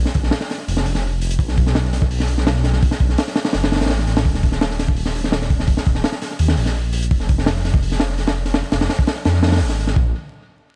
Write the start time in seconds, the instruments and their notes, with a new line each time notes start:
0.05 snare
0.14 detuned saw bass A#1, kick, open hi-hat
0.23 snare
0.31 snare, open hi-hat
0.41 snare
0.50 snare, open hi-hat
0.68 detuned saw bass F1, open hi-hat
0.77 snare
0.86 detuned saw bass F1, open hi-hat
0.95 snare
1.21 open hi-hat
1.31 closed hi-hat
1.39 detuned saw bass B1, kick, open hi-hat
1.48 snare
1.57 kick, open hi-hat
1.67 snare
1.75 snare, open hi-hat
1.85 snare
1.93 snare, open hi-hat
2.02 kick
2.11 open hi-hat
2.20 snare
2.28 open hi-hat
2.38 snare
2.47 snare, open hi-hat
2.56 snare
2.64 snare, open hi-hat
2.73 snare
2.83 kick, open hi-hat
2.91 snare
3.00 detuned saw bass B1, kick, open hi-hat
3.09 snare
3.18 snare, open hi-hat
3.28 snare
3.36 snare, open hi-hat
3.44 snare, open hi-hat
3.53 detuned saw bass F#1, snare, open hi-hat
3.63 snare, open hi-hat
3.72 snare, open hi-hat
3.75 snare, open hi-hat
3.81 detuned saw bass A1, snare, open hi-hat
3.86 snare, open hi-hat
3.90 snare, open hi-hat
3.99 snare
4.07 detuned saw bass A1, snare, open hi-hat
4.17 snare, open hi-hat
4.25 detuned saw bass D#1, kick, open hi-hat
4.35 snare
4.43 kick, open hi-hat
4.52 snare
4.61 snare, open hi-hat
4.71 snare
4.79 snare, open hi-hat
4.88 kick
4.96 open hi-hat
5.06 snare
5.15 open hi-hat
5.24 snare
5.32 snare, open hi-hat
5.42 snare
5.50 kick, open hi-hat
5.60 snare
5.68 kick, open hi-hat
5.77 snare
5.85 detuned saw bass D#1, kick, open hi-hat
5.95 snare
6.04 snare, open hi-hat
6.12 snare
6.22 snare, open hi-hat
6.39 detuned saw bass D#2, open hi-hat
6.48 snare
6.57 detuned saw bass A#1, open hi-hat
6.66 snare
6.93 open hi-hat
7.02 closed hi-hat
7.11 detuned saw bass F1, kick, open hi-hat
7.20 snare
7.29 kick, open hi-hat
7.38 snare
7.46 snare, open hi-hat
7.57 snare
7.65 snare, open hi-hat
7.74 kick
7.82 open hi-hat
7.92 snare
8.00 snare, open hi-hat
8.10 snare
8.18 snare, open hi-hat
8.27 snare, open hi-hat
8.36 snare
8.45 snare, open hi-hat
8.54 snare, open hi-hat
8.62 snare
8.72 detuned saw bass F1, snare, open hi-hat
8.80 snare, open hi-hat
8.89 snare, open hi-hat
8.99 kick
9.07 snare, open hi-hat
9.16 snare
9.25 detuned saw bass F2, snare, open hi-hat
9.33 snare
9.43 snare, open hi-hat
9.48 snare, open hi-hat
9.52 snare, open hi-hat
9.57 snare, open hi-hat
9.60 detuned saw bass G#1, open hi-hat
9.69 snare
9.79 open hi-hat
9.87 snare
9.96 detuned saw bass A#1, kick